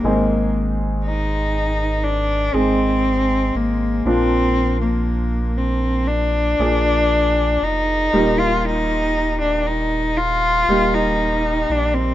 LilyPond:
<<
  \new Staff \with { instrumentName = "Cello" } { \time 4/4 \key ees \major \tempo 4 = 59 bes8 r8 ees'4 d'8 c'4 bes8 | c'8. bes8. c'8 d'4. ees'8~ | ees'16 f'16 ees'8. d'16 ees'8 f'8. ees'8. d'16 c'16 | }
  \new Staff \with { instrumentName = "Grand piano" } { \time 4/4 \key ees \major <aes c' ees' aes'>2 r8 <aes c' ees' aes'>4. | <f bes d' f'>2 r8 <f bes aes' d''>4. | <g bes ees' g'>2 r8 <g bes ees' g'>4. | }
  \new Staff \with { instrumentName = "Grand piano" } { \clef bass \time 4/4 \key ees \major <aes, ees>4. r2 r8 | bes,4. r2 r8 | bes,4. r2 r8 | }
  \new Staff \with { instrumentName = "Sub bass" } { \clef bass \time 4/4 \key ees \major aes,,2~ aes,,8 aes,,4 aes,,8 | bes,,2~ bes,,8 bes,,4 f,,8 | ees,,2~ ees,,8 ees,,4 bes,,8 | }
>>